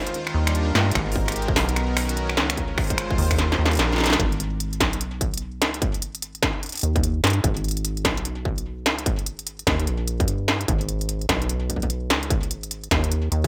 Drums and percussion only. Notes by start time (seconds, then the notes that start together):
0.07 closed hi-hat
0.14 closed hi-hat
0.27 finger snap
0.47 finger snap, closed hi-hat
0.55 closed hi-hat
0.75 finger snap, snare
0.91 finger snap, kick, closed hi-hat
0.95 closed hi-hat
1.12 kick, open hi-hat
1.28 finger snap, closed hi-hat
1.32 closed hi-hat
1.36 closed hi-hat
1.42 closed hi-hat
1.48 kick
1.56 snare, open hi-hat
1.69 closed hi-hat
1.76 finger snap, closed hi-hat
1.97 finger snap, open hi-hat
2.09 closed hi-hat
2.17 closed hi-hat
2.29 finger snap
2.37 snare
2.50 finger snap, closed hi-hat
2.57 kick, closed hi-hat
2.78 finger snap, kick, open hi-hat
2.81 open hi-hat
2.84 open hi-hat
2.87 kick, closed hi-hat, open hi-hat
2.98 finger snap, closed hi-hat
3.11 kick
3.18 open hi-hat
3.22 open hi-hat
3.25 open hi-hat
3.31 finger snap, kick, closed hi-hat, open hi-hat
3.36 snare, closed hi-hat, open hi-hat
3.52 snare
3.66 snare
3.71 closed hi-hat
3.73 closed hi-hat
3.75 closed hi-hat
3.77 snare, closed hi-hat
3.79 closed hi-hat
3.93 snare
3.96 snare
3.98 snare
4.00 snare
4.04 snare, closed hi-hat
4.07 snare
4.10 snare
4.13 snare
4.20 kick, closed hi-hat
4.32 closed hi-hat
4.40 closed hi-hat
4.60 closed hi-hat
4.73 closed hi-hat
4.80 kick, snare, closed hi-hat
4.93 closed hi-hat
5.01 closed hi-hat
5.21 kick, closed hi-hat
5.34 closed hi-hat
5.37 closed hi-hat
5.62 snare, closed hi-hat
5.74 closed hi-hat
5.82 kick, closed hi-hat
5.94 closed hi-hat
6.02 closed hi-hat
6.15 closed hi-hat
6.22 closed hi-hat
6.35 closed hi-hat
6.43 kick, snare, closed hi-hat
6.63 closed hi-hat
6.66 closed hi-hat
6.69 closed hi-hat
6.72 closed hi-hat
6.75 closed hi-hat
6.77 closed hi-hat
6.79 closed hi-hat
6.81 closed hi-hat
6.83 closed hi-hat
6.96 kick, closed hi-hat
7.03 closed hi-hat
7.24 snare, closed hi-hat
7.27 closed hi-hat
7.30 closed hi-hat
7.44 kick, closed hi-hat
7.57 closed hi-hat
7.64 closed hi-hat
7.68 closed hi-hat
7.71 closed hi-hat
7.77 closed hi-hat
7.85 closed hi-hat
7.97 closed hi-hat
8.05 kick, snare, closed hi-hat
8.17 closed hi-hat
8.25 closed hi-hat
8.45 kick
8.58 closed hi-hat
8.86 snare, closed hi-hat
8.98 closed hi-hat
9.06 kick, closed hi-hat
9.19 closed hi-hat
9.26 closed hi-hat
9.39 closed hi-hat
9.47 closed hi-hat
9.59 closed hi-hat
9.67 kick, snare, closed hi-hat
9.79 closed hi-hat
9.87 closed hi-hat
10.08 closed hi-hat
10.20 kick, closed hi-hat
10.28 closed hi-hat
10.48 snare
10.61 closed hi-hat
10.68 kick, closed hi-hat
10.81 closed hi-hat
10.89 closed hi-hat
11.01 closed hi-hat
11.09 closed hi-hat
11.21 closed hi-hat
11.29 kick, snare, closed hi-hat
11.42 closed hi-hat
11.49 closed hi-hat
11.70 kick, closed hi-hat
11.76 kick
11.82 kick, closed hi-hat
11.90 closed hi-hat
12.10 snare, closed hi-hat
12.23 closed hi-hat
12.30 kick, closed hi-hat
12.43 closed hi-hat
12.51 closed hi-hat
12.63 closed hi-hat
12.71 closed hi-hat
12.84 closed hi-hat
12.91 kick, snare, closed hi-hat
13.04 closed hi-hat
13.12 closed hi-hat
13.32 closed hi-hat